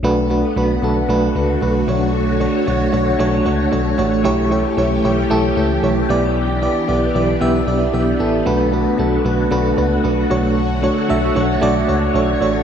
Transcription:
0.03 tine electric piano B1, string machine D3 A3 B3 F#4, fm electric piano A3 D4 F#4 B4
0.30 fm electric piano A3 D4 F#4 B4
0.56 tine electric piano B1, fm electric piano A3 D4 F#4 B4
0.83 tine electric piano B1, fm electric piano A3 D4 F#4 A4
1.09 tine electric piano B1, fm electric piano A3 D4 F#4 B4
1.35 tine electric piano C#2, fm electric piano A3 D4 F#4 B4
1.61 tine electric piano B1, fm electric piano A3 D4 F#4 B4
1.88 tine electric piano B1, fm electric piano A3 D4 F#4 C#5, string machine C#5
2.40 fm electric piano A3 D4 F#4 C#5
2.66 tine electric piano B1, fm electric piano A3 D4 F#4 C#5
2.93 tine electric piano B1, fm electric piano A3 D4 F#4 C#5
3.19 tine electric piano B1, fm electric piano A3 D4 F#4 C#5
3.45 tine electric piano C#2, fm electric piano A3 D4 F#4 C#5
3.72 tine electric piano B1, fm electric piano A3 D4 F#4 C#5
3.98 tine electric piano A1, fm electric piano A3 D4 F#4 C#5
4.24 tine electric piano B1, string machine E3 C#4 G4, fm electric piano A3 E4 G4 C#5
4.51 fm electric piano A3 E4 G4 C#5
4.77 tine electric piano B1, fm electric piano A3 E4 G4 C#5
5.04 tine electric piano B1, fm electric piano A3 E4 G4 C#5
5.30 tine electric piano B1, fm electric piano A3 E4 G4 A4
5.56 tine electric piano C#2, fm electric piano A3 E4 G4 A4
5.83 tine electric piano B1, fm electric piano A3 E4 G4 C#5
6.09 tine electric piano B1, fm electric piano B3 E4 G4 D5, string machine B3 D4
6.62 fm electric piano B3 E4 G4 D5
6.88 tine electric piano B1, fm electric piano B3 E4 G4 D5
7.14 tine electric piano B1, fm electric piano B3 E4 G4 D5
7.41 tine electric piano B1, fm electric piano B3 E4 G4 E5
7.67 tine electric piano B1, fm electric piano B3 E4 G4 D5
7.93 tine electric piano B1, fm electric piano B3 E4 G4 E5
8.19 tine electric piano A1, fm electric piano B3 E4 G4 A4
8.46 tine electric piano B1, string machine D3 A3 F#4, fm electric piano A3 D4 F#4 B4
8.72 fm electric piano A3 D4 F#4 B4
8.98 tine electric piano B1, fm electric piano A3 D4 F#4 A4
9.24 tine electric piano B1, fm electric piano A3 D4 F#4 B4
9.51 tine electric piano B1, fm electric piano A3 D4 F#4 B4
9.77 tine electric piano C#2, fm electric piano A3 D4 F#4 B4
10.03 tine electric piano B1, fm electric piano A3 D4 F#4 B4
10.30 tine electric piano B1, string machine D3 C#5, fm electric piano A3 D4 F#4 C#5
10.82 fm electric piano A3 D4 F#4 C#5
11.09 tine electric piano B1, fm electric piano A3 D4 F#4 E5
11.35 tine electric piano B1, fm electric piano A3 D4 F#4 C#5
11.61 tine electric piano B1, fm electric piano A3 D4 F#4 D5
11.88 tine electric piano C#2, fm electric piano A3 D4 F#4 C#5
12.14 tine electric piano B1, fm electric piano A3 D4 F#4 C#5
12.41 tine electric piano A1, fm electric piano A3 D4 F#4 C#5

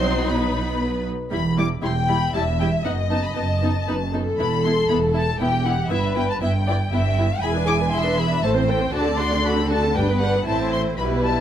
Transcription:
Already playing: double bass section B1, viola section F#3 D#4, cello section C4, violin section C5 C6
0.27 cello section B3, violin section B4 B5
1.31 double bass section E1, cello section E2, viola section G3 E4, violin section B5
1.57 viola section G3 E4, violin section D6
1.83 double bass section E1, cello section E2, viola section G3 E4, violin section G5 C6
2.09 viola section G3 E4, violin section B5
2.34 double bass section E1, cello section E2, viola section G3 E4, violin section E5 A5
2.59 viola section G3 E4, violin section G5
2.85 double bass section F#1, cello section F#2, viola section B3 D#4, violin section D#5 F#5
3.10 viola section B3 D#4, violin section A5
3.24 violin section B5
3.36 double bass section F#1, cello section F#2, viola section B3 D#4, violin section A5
3.63 viola section B3 D#4
3.87 double bass section F#1, cello section F#2, viola section B3 D#4, violin section B4
4.13 viola section B3 D#4, violin section A4
4.38 double bass section E1, cello section E2, viola section B3 E4, violin section B5
4.64 viola section B3 E4, violin section C6
4.89 double bass section E1, cello section E2, viola section B3 E4, violin section B5
5.14 viola section B3 E4, violin section A5
5.40 double bass section E1, cello section E2, viola section B3 E4, violin section G4 G5
5.65 viola section B3 E4, violin section F#5
5.90 double bass section G1, cello section G2, viola section B3 E4, violin section B4 E5
6.16 viola section B3 E4, violin section G5
6.30 violin section A5
6.41 double bass section G1, cello section G2, viola section B3 E4, violin section E5 G5
6.68 viola section B3 E4, violin section D5
6.92 double bass section G1, cello section G2, viola section B3 E4, violin section E5
7.18 viola section B3 E4
7.42 double bass section E1, cello section E2, viola section E4 G#4, violin section G#5 B5
7.55 viola section D4 B4
7.67 viola section E4 G#4, violin section D6
7.80 viola section D4 B4
7.92 viola section E4 G#4, violin section E5 C6
8.05 viola section D4 B4
8.17 viola section E4 G#4, violin section B5
8.30 viola section D4 B4
8.43 double bass section A1, cello section A2, viola section A3 A4, violin section C5 A5
8.56 viola section C4 C5
8.69 viola section A3 A4, violin section G5
8.81 viola section C4 C5
8.93 double bass section D2, cello section D3, viola section D4 F#4, violin section D5 A5
9.06 viola section C4 A4
9.19 viola section D4 F#4, violin section C6
9.32 viola section C4 A4
9.44 viola section D4 F#4, violin section A4 B5
9.57 viola section C4 A4
9.70 viola section D4 F#4, violin section A5
9.83 viola section C4 A4
9.95 double bass section G1, cello section G2, viola section D4 G4, violin section B4 G5
10.09 viola section B3 B4
10.21 viola section D4 G4, violin section F#5
10.35 viola section B3 B4
10.47 double bass section A1, cello section A2, viola section C4 E4, violin section C5 A5
10.72 violin section C6
10.98 double bass section B1, cello section B2, viola section G3 E4, violin section B4 B5
11.24 violin section A5

